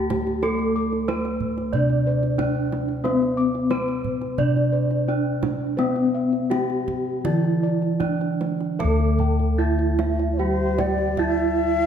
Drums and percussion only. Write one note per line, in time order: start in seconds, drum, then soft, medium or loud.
0.10 kendang high medium
0.10 kendang low soft
0.27 kendang slap soft
0.43 kendang high soft
0.59 kendang slap soft
0.92 kendang slap soft
1.08 kendang high medium
1.25 kendang slap soft
1.40 kendang low soft
1.58 kendang slap soft
1.73 kendang low soft
1.89 kendang slap soft
2.23 kendang slap soft
2.39 kendang high medium
2.39 kendang low medium
2.72 kendang high soft
2.88 kendang slap soft
3.05 kendang high medium
3.22 kendang slap soft
3.55 kendang slap soft
3.70 kendang high medium
3.88 kendang slap soft
4.04 kendang low soft
4.21 kendang slap soft
4.38 kendang low medium
4.57 kendang slap soft
4.91 kendang slap soft
5.43 kendang high medium
5.43 kendang low medium
5.79 kendang high medium
5.96 kendang slap soft
6.33 kendang slap soft
6.51 kendang high soft
6.70 kendang slap soft
6.88 kendang low soft
7.25 kendang low medium
7.44 kendang slap soft
7.82 kendang slap soft
8.00 kendang high soft
8.00 kendang low soft
8.21 kendang slap soft
8.41 kendang high soft
8.61 kendang slap soft
8.80 kendang high soft
8.80 kendang low medium
9.00 kendang slap soft
9.19 kendang low medium
9.40 kendang slap soft
9.79 kendang slap soft
9.99 kendang high medium
10.19 kendang slap soft
10.79 kendang high medium
10.79 kendang low soft
10.98 kendang slap soft
11.17 kendang low medium
11.37 kendang slap soft
11.78 kendang slap soft